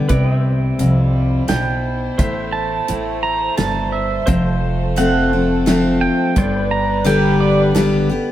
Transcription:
0.09 C2 C3 G3 E4 B4 C5 D5 G5, kick, closed hi-hat
0.29 C5
0.35 E5
0.79 C2 F2, closed hi-hat
1.48 B1 B2 G5, snare, closed hi-hat
2.18 A1 A2 A3 C5 E5, kick, closed hi-hat
2.52 A5
2.88 A1 A2, closed hi-hat
3.23 A#5
3.57 G1 G2 A5, snare, closed hi-hat
3.92 E5
4.26 F1 F2 A3 A4 C5 A5, kick, closed hi-hat
4.96 F3 A3 C4 F#5, closed hi-hat
5.33 C4
5.66 F3 A3 C4, snare, closed hi-hat
6.01 G5
6.36 G1 G2 G3 B3 D4 B4 C5 D5 G5, kick, closed hi-hat
6.58 B4
6.71 A#5
7.05 D3 G3 B3 G4 G5, closed hi-hat
7.40 D5
7.75 D3 G3 B3 G4, snare, closed hi-hat
8.10 B3 G4

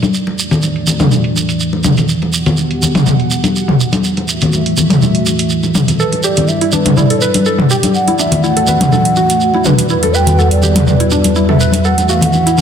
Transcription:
Already playing: G3 E4 D5
0.02 closed hi-hat, high conga, shekere
0.14 E3 A3 F#4 D5, shekere
0.27 closed hi-hat, muted conga
0.39 shekere
0.51 closed hi-hat, low conga, shekere
0.62 muted conga, shekere
0.76 closed hi-hat
0.87 low conga, shekere
1.00 closed hi-hat, mid tom, muted conga, high conga, shekere
1.11 high conga, shekere
1.24 closed hi-hat
1.36 muted conga, shekere
1.49 closed hi-hat, shekere
1.60 shekere
1.73 muted conga
1.84 mid tom, high conga, shekere
1.97 closed hi-hat, low conga, shekere
2.09 B3 G4 F#5, shekere
2.22 closed hi-hat, muted conga
2.33 shekere
2.46 closed hi-hat, low conga, shekere
2.57 muted conga, shekere
2.71 closed hi-hat
2.82 low conga, shekere
2.95 closed hi-hat, mid tom, muted conga, high conga, shekere
3.06 mid tom, shekere
3.20 closed hi-hat
3.31 muted conga, shekere
3.44 closed hi-hat, high conga, shekere
3.56 shekere
3.68 mid tom, muted conga
3.80 shekere
3.93 closed hi-hat, high conga, shekere
4.04 E3 A3 F#4 E5, shekere
4.17 closed hi-hat, muted conga
4.28 shekere
4.41 closed hi-hat, low conga, shekere
4.53 muted conga, high conga, shekere
4.66 closed hi-hat
4.77 low conga, shekere
4.90 closed hi-hat, mid tom, muted conga, high conga, shekere
5.02 high conga, shekere
5.15 closed hi-hat
5.26 muted conga, shekere
5.38 closed hi-hat, shekere
5.50 shekere
5.63 muted conga, shekere
5.75 mid tom, high conga, shekere
5.88 closed hi-hat, low conga, shekere
5.99 G3 E4 A4 B4 D5, shekere
6.12 closed hi-hat, muted conga
6.23 G4 D5, shekere
6.36 closed hi-hat, low conga, shekere
6.48 E5, muted conga, shekere
6.61 E4, closed hi-hat
6.72 D4 B4, low conga, shekere
6.85 closed hi-hat, mid tom, muted conga, high conga, shekere
6.97 E4 D5, mid tom, shekere
7.10 A4, closed hi-hat
7.21 B4, muted conga, shekere
7.34 closed hi-hat, high conga, shekere
7.45 A4, shekere
7.59 mid tom, muted conga
7.70 G4 G5, shekere
7.83 closed hi-hat, high conga, shekere
7.94 E3 A3 F#4 F#5, shekere
8.07 E4, closed hi-hat, muted conga
8.19 D4 E5, shekere
8.32 closed hi-hat, low conga, shekere
8.43 E4 F#5, muted conga, shekere
8.56 A4, closed hi-hat
8.67 B4, low conga, shekere
8.80 closed hi-hat, mid tom, muted conga, high conga, shekere
8.92 A4, high conga, shekere
9.05 closed hi-hat
9.16 F#4, muted conga, shekere
9.30 closed hi-hat, shekere
9.41 shekere
9.54 E4, muted conga
9.65 D4 B4, mid tom, high conga, shekere
9.78 closed hi-hat, low conga, shekere
9.89 E2 G3 E4 B4, shekere
10.03 A4, closed hi-hat, muted conga
10.14 B4 G5, shekere
10.26 closed hi-hat, low conga, shekere
10.38 A4 F#5, muted conga, shekere
10.51 D5, closed hi-hat
10.63 G4, low conga, shekere
10.75 closed hi-hat, mid tom, muted conga, high conga, shekere
10.87 D5, mid tom, shekere
11.00 E4, closed hi-hat
11.11 D4 D5, muted conga, shekere
11.24 closed hi-hat, high conga, shekere
11.35 E4, shekere
11.49 A4 E5, mid tom, muted conga
11.60 B4, shekere
11.72 closed hi-hat, high conga, shekere
11.84 E3 A3 F#4 A4 E5 F#5, shekere
11.98 closed hi-hat, muted conga, shekere
12.09 F#4 F5, shekere
12.21 F#5, closed hi-hat, low conga, shekere
12.33 muted conga, high conga, shekere
12.46 E4, closed hi-hat, shekere
12.58 low conga, shekere

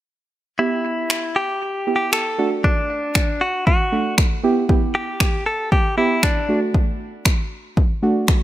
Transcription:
0.59 B3 E4 G4
1.10 finger snap
1.36 G4
1.87 B3 E4 G4
1.96 G4
2.13 A4, finger snap
2.38 A3 D4 F#4
2.64 D4, kick
3.15 finger snap, kick
3.41 F#4
3.67 F#4, kick
3.92 A3 D4 F#4
4.18 finger snap, kick
4.44 B3 E4 G4
4.69 B3 E4 G4, kick
4.95 G4
5.20 finger snap, kick
5.46 A4
5.72 G4, kick
5.97 B3 E4 G4
6.23 D4, finger snap, kick
6.49 A3 D4 F#4
6.74 kick
7.25 finger snap, kick
7.77 kick
8.02 A3 D4 F#4
8.28 finger snap, kick

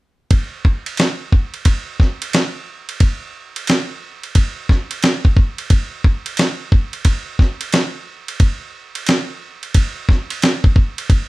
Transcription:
0.31 kick, ride
0.65 kick
0.86 ride
0.97 snare, hi-hat pedal, ride
1.32 kick
1.54 ride
1.65 kick, ride
2.00 kick, snare
2.22 ride
2.33 snare, hi-hat pedal, ride
2.89 ride
3.00 kick, ride
3.56 ride
3.67 snare, hi-hat pedal, ride
4.23 ride
4.35 kick, ride
4.69 kick, snare
4.91 ride
5.03 snare, hi-hat pedal, ride
5.25 kick
5.37 kick
5.58 ride
5.70 kick, ride
6.04 kick
6.26 ride
6.37 snare, hi-hat pedal, ride
6.72 kick
6.93 ride
7.05 kick, ride
7.39 kick, snare
7.61 ride
7.72 snare, hi-hat pedal, ride
8.28 ride
8.40 kick, ride
8.95 ride
9.07 snare, hi-hat pedal, ride
9.63 ride
9.74 kick, ride
10.09 kick, snare
10.30 ride
10.42 snare, hi-hat pedal, ride
10.64 kick
10.76 kick
10.98 ride
11.10 kick, ride

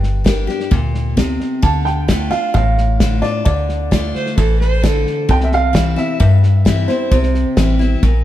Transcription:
Already playing: G1 G2 G5
0.03 snare
0.24 G3 A#3 D4 G4, kick, snare, hi-hat pedal
0.47 D4 G4, snare
0.60 snare
0.71 D2 A#2, kick, snare
0.95 snare
1.17 C3, kick, snare, hi-hat pedal
1.40 snare
1.62 D2 D3 A5, kick, snare
1.85 G5, snare
2.08 D3 A3 D4 F4, kick, snare, hi-hat pedal
2.31 D4 F4 F5, snare
2.54 A1 A2 F5, kick, snare
2.78 snare
3.00 D3 A3 D4 F4, kick, snare, hi-hat pedal
3.22 D4 F4 D5, snare
3.45 D2 D3 D5, kick, snare
3.69 snare
3.91 D3 A3 D4 F4, kick, snare, hi-hat pedal
4.15 C5, snare
4.26 snare
4.37 A1 E3 A4, kick, snare
4.59 C5, snare
4.83 D3 A4, kick, snare, hi-hat pedal
5.07 snare
5.29 C2 C3 G5, kick, snare
5.41 E5, snare
5.52 F5, snare
5.73 E3 G3 C4 E4, kick, snare, hi-hat pedal
5.96 C4 E4 E5, snare
6.20 G2 E5, kick, snare
6.43 snare
6.65 E3 G3 C4 E4, kick, snare, hi-hat pedal
6.88 C4 E4 C5, snare
7.11 C2 C3 C5, kick, snare
7.23 snare
7.35 snare
7.57 A1 E3 G3 C4 E4, kick, snare, hi-hat pedal
7.79 C4 E4, snare
8.03 A#1 A#2, kick, snare

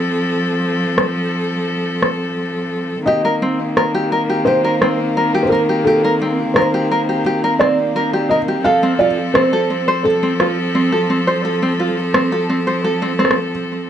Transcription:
Already playing: F3 C4 A4
0.98 cross-stick
2.02 cross-stick
3.06 D#3 A#3 C4 G4 D#5
3.25 A#4
3.42 C4
3.77 A#4, cross-stick
3.94 G4
4.12 A#4
4.30 G4
4.45 G4 C5
4.65 A#4
4.82 C4, cross-stick
5.17 A#4
5.34 G4
5.43 C5
5.49 A#4
5.69 G4
5.84 G4 A4
6.04 A#4
6.22 C4
6.54 A#4 C5, cross-stick
6.74 G4
6.91 A#4
7.09 G4
7.26 G4
7.44 A#4
7.59 C4 D5, cross-stick
7.96 A#4
8.13 G4
8.29 A#4 D#5
8.48 G4
8.64 F3 A4 F5
8.83 C4
8.99 F4 D5
9.34 C4 C5, cross-stick
9.53 A4
9.70 C4
9.88 C5
10.04 A4
10.23 C4
10.40 F4, cross-stick
10.75 C4
10.92 A4
11.10 C4
11.27 C5
11.45 A4
11.62 C4
11.80 F4
12.14 C4, cross-stick
12.32 A4
12.49 C4
12.67 C5
12.84 A4
13.02 C4
13.19 C4, cross-stick
13.25 cross-stick
13.31 cross-stick

